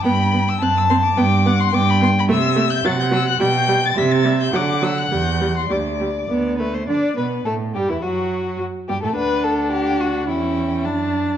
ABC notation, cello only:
X:1
M:2/4
L:1/16
Q:1/4=106
K:G
V:1 name="Cello" clef=bass
G,,4 F,,4 | G,,4 G,,4 | C,4 C,4 | B,,4 C,4 |
D,4 E,,4 | D,,4 D,,4 | D,2 B,,2 A,,2 G,, E,, | F,,4 z2 G,, A,, |
D,,8 | E,,4 F,,4 |]